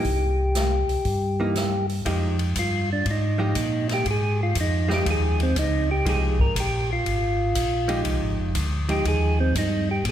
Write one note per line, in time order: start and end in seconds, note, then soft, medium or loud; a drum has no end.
0.00 1.86 G4 medium
0.04 0.85 C2 medium
0.04 kick soft
0.04 open hi-hat soft
0.55 snare medium
0.55 closed hi-hat medium
0.89 0.97 C2 soft
0.89 open hi-hat soft
1.05 2.01 G2 medium
1.05 kick soft
1.05 open hi-hat soft
1.40 1.54 E3 medium
1.40 1.54 A#3 medium
1.40 1.54 D#4 medium
1.55 snare medium
1.55 closed hi-hat soft
1.89 open hi-hat soft
2.06 2.54 F2 medium
2.06 2.36 F3 medium
2.06 2.36 G#3 soft
2.06 2.36 D#4 medium
2.06 2.36 G4 medium
2.06 kick soft
2.06 ride medium
2.39 ride soft
2.55 3.04 G2 medium
2.55 2.90 F4 medium
2.55 kick soft
2.55 hi-hat pedal soft
2.55 ride medium
2.93 3.07 D4 medium
3.06 3.54 G#2 medium
3.06 kick soft
3.06 ride soft
3.11 3.88 D#4 medium
3.38 3.53 F3 medium
3.38 3.54 G#3 medium
3.38 3.54 D#4 medium
3.38 3.54 G4 medium
3.55 4.04 A#2 medium
3.55 kick soft
3.55 hi-hat pedal soft
3.55 ride medium
3.89 snare soft
3.89 ride soft
3.94 4.07 G4 medium
4.05 4.54 G#2 medium
4.05 kick soft
4.05 ride medium
4.11 4.41 G#4 medium
4.43 4.57 F4 medium
4.55 5.04 F2 medium
4.55 kick soft
4.55 hi-hat pedal medium
4.55 ride medium
4.61 4.91 D#4 medium
4.88 5.52 F3 medium
4.88 5.52 G#3 medium
4.88 5.52 D#4 medium
4.88 5.52 G4 medium
4.88 snare soft
4.94 5.07 G4 medium
5.06 5.54 D#2 medium
5.06 kick soft
5.06 ride medium
5.10 5.41 G#4 medium
5.40 5.57 C4 medium
5.40 ride soft
5.56 6.04 C#2 medium
5.56 5.90 D#4 medium
5.56 kick soft
5.56 hi-hat pedal soft
5.56 ride medium
5.91 6.06 G4 medium
6.05 6.54 C2 medium
6.05 6.36 F3 medium
6.05 6.36 G#3 medium
6.05 6.36 D#4 medium
6.05 6.36 G4 medium
6.05 6.40 G#4 medium
6.05 kick soft
6.05 ride medium
6.39 6.56 A#4 medium
6.39 kick soft
6.55 7.04 A#1 medium
6.55 kick soft
6.55 hi-hat pedal soft
6.55 ride medium
6.60 6.90 G4 medium
6.93 8.03 F4 medium
7.05 7.54 G#1 medium
7.05 kick soft
7.05 ride soft
7.55 8.04 A#1 medium
7.55 kick soft
7.55 hi-hat pedal medium
7.55 ride medium
7.88 8.51 F3 medium
7.88 8.51 G#3 medium
7.88 8.52 D#4 medium
7.88 8.52 G4 medium
7.88 ride soft
8.05 8.21 C2 medium
8.05 kick soft
8.05 ride medium
8.21 8.38 G#1 medium
8.38 8.54 F1 medium
8.55 9.03 D2 medium
8.55 kick soft
8.55 hi-hat pedal medium
8.55 ride medium
8.89 9.51 F3 medium
8.89 9.52 G#3 medium
8.89 9.52 D#4 medium
8.89 9.52 G4 medium
8.89 9.06 G4 medium
8.89 ride soft
9.05 9.53 D#2 medium
9.05 9.39 G#4 medium
9.05 kick soft
9.05 ride medium
9.40 9.55 C4 medium
9.55 10.03 G2 medium
9.55 9.89 D#4 medium
9.55 kick soft
9.55 hi-hat pedal medium
9.55 ride medium
9.91 10.05 G4 medium
10.04 10.12 A#2 medium
10.04 kick soft
10.04 ride medium